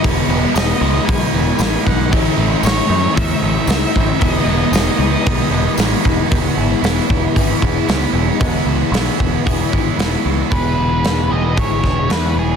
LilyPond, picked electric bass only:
\new Staff \with { instrumentName = "Picked electric bass" } { \clef bass \time 4/4 \key e \major \tempo 4 = 115 e,,8 e,,8 e,,8 cis,8 b,,8 e,,8 a,,8 b,,8 | a,,8 a,,8 a,,8 fis,8 e,8 a,,8 cis,8 a,,8 | e,,8 e,,8 e,,8 cis,8 b,,8 e,,8 a,,8 e,,8 | e,,8 gis,,8 e,,8 e,,8 gis,,8 e,,8 cis,8 e,,8 |
e,,8 cis,8 b,,8 e,,8 e,,8 gis,,8 e,,8 cis,8 | e,,8 e,,8 e,,8 e,,8 gis,,8 e,,8 e,8 e,,8 | }